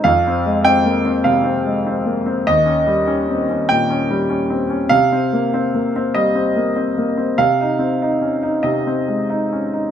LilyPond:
\new Staff \with { instrumentName = "Grand piano" } { \time 4/4 \key aes \major \tempo 4 = 98 << { f''4 g''4 f''2 | ees''2 g''2 | f''2 ees''2 | f''2 ees''2 | } \\ { \tuplet 3/2 { f,8 c'8 aes8 c'8 bes8 c'8 c8 c'8 aes8 c'8 bes8 c'8 } | \tuplet 3/2 { ees,8 des'8 g8 des'8 c'8 des'8 bes,8 des'8 g8 des'8 c'8 des'8 } | \tuplet 3/2 { c8 c'8 bes8 c'8 bes8 c'8 g8 c'8 bes8 c'8 bes8 c'8 } | \tuplet 3/2 { c8 ees'8 c'8 ees'8 des'8 ees'8 c8 c'8 aes8 ees'8 des'8 ees'8 } | } >> }